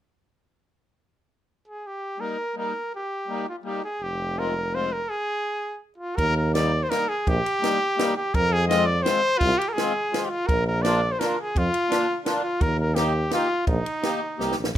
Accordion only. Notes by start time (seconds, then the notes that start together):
2.18 G3 A#3 D#4
2.54 G3 A#3 D#4
3.27 G3 A#3 D#4
3.63 G3 A#3 D#4
4.36 G#3 C4 F4
4.72 G#3 C4 F4
6.54 G3 A#3 D#4
6.88 G3 A#3 D#4
7.61 G3 A#3 D#4
7.96 G3 A#3 D#4
8.67 G#3 C4 F4
9.03 G#3 C4 F4
9.76 G#3 C4 F4
10.11 G#3 C4 F4
10.83 A#3 D4 F4
11.19 A#3 D4 F4
11.89 A#3 D4 F4
12.24 A#3 D4 F4
12.95 A#3 D#4 G4
13.30 A#3 D#4 G4
14.03 A#3 D#4 G4
14.38 A#3 D#4 G4